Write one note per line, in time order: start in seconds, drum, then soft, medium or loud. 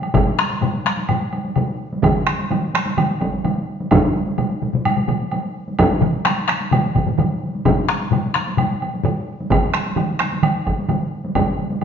0.02 taiko high medium
0.02 high woodblock soft
0.14 taiko loud
0.14 taiko low-mid medium
0.14 taiko high medium
0.14 high woodblock medium
0.38 taiko rim medium
0.38 taiko high medium
0.50 taiko high medium
0.61 taiko low-mid medium
0.61 taiko high medium
0.61 high woodblock soft
0.85 taiko rim medium
0.85 taiko high medium
0.97 taiko high soft
1.09 taiko low-mid medium
1.09 taiko high medium
1.09 high woodblock medium
1.33 taiko high medium
1.33 high woodblock soft
1.45 taiko high soft
1.56 taiko low-mid loud
1.56 taiko high medium
1.56 high woodblock soft
1.93 taiko high medium
2.03 taiko loud
2.03 taiko mid loud
2.03 taiko high medium
2.03 high woodblock medium
2.27 taiko rim medium
2.27 taiko high soft
2.39 taiko high medium
2.51 taiko mid loud
2.51 taiko high medium
2.51 high woodblock soft
2.74 taiko rim medium
2.74 taiko high medium
2.86 taiko high medium
2.98 taiko mid medium
2.98 taiko high medium
2.98 high woodblock medium
3.21 taiko medium
3.21 taiko high medium
3.21 high woodblock soft
3.33 taiko high medium
3.45 taiko mid medium
3.45 taiko high medium
3.45 high woodblock soft
3.80 taiko high medium
3.91 taiko loud
3.91 taiko low-mid medium
3.91 taiko high medium
3.91 high woodblock medium
4.16 taiko high medium
4.27 taiko high medium
4.38 taiko low-mid loud
4.38 taiko high medium
4.38 high woodblock soft
4.62 taiko low-mid medium
4.62 taiko high medium
4.73 taiko low-mid medium
4.73 taiko high medium
4.85 taiko low-mid medium
4.85 taiko high medium
4.85 high woodblock medium
4.97 taiko low-mid medium
5.08 taiko low-mid loud
5.08 taiko high medium
5.08 high woodblock soft
5.21 taiko high soft
5.32 taiko high medium
5.32 high woodblock soft
5.68 taiko high soft
5.79 taiko loud
5.79 taiko high medium
5.79 high woodblock medium
6.01 taiko low-mid medium
6.01 taiko mid loud
6.01 taiko high soft
6.14 taiko high soft
6.25 taiko rim medium
6.25 taiko high medium
6.25 high woodblock medium
6.48 taiko rim medium
6.48 taiko high soft
6.61 taiko high soft
6.71 taiko low-mid medium
6.71 taiko mid medium
6.71 taiko high medium
6.71 high woodblock medium
6.95 taiko medium
6.95 taiko low-mid medium
6.95 taiko mid medium
6.95 taiko high medium
6.95 high woodblock soft
7.07 taiko low-mid medium
7.07 taiko mid medium
7.07 taiko high soft
7.18 taiko low-mid medium
7.18 taiko mid loud
7.18 taiko high medium
7.18 high woodblock soft
7.43 taiko high soft
7.55 taiko high soft
7.65 taiko medium
7.65 taiko low-mid medium
7.65 taiko high medium
7.65 high woodblock soft
7.89 taiko rim medium
7.89 taiko high soft
8.01 taiko high soft
8.11 taiko low-mid loud
8.11 taiko high medium
8.11 high woodblock soft
8.34 taiko rim medium
8.34 taiko high medium
8.47 taiko high medium
8.57 taiko low-mid medium
8.57 taiko high medium
8.57 high woodblock medium
8.82 taiko high medium
8.82 high woodblock soft
8.94 taiko high soft
9.04 taiko low-mid loud
9.04 taiko high medium
9.04 high woodblock soft
9.40 taiko high medium
9.50 taiko medium
9.50 taiko mid loud
9.50 taiko high medium
9.50 high woodblock medium
9.74 taiko rim medium
9.74 taiko high soft
9.86 taiko high soft
9.96 taiko mid loud
9.96 taiko high medium
9.96 high woodblock soft
10.20 taiko rim medium
10.20 taiko high medium
10.32 taiko high medium
10.43 taiko mid loud
10.43 taiko high medium
10.43 high woodblock medium
10.66 taiko medium
10.66 taiko high medium
10.66 high woodblock soft
10.78 taiko high soft
10.89 taiko mid loud
10.89 taiko high medium
10.89 high woodblock soft
11.24 taiko high medium
11.35 taiko medium
11.35 taiko low-mid loud
11.35 taiko high medium
11.35 high woodblock medium
11.59 taiko high medium
11.70 taiko high medium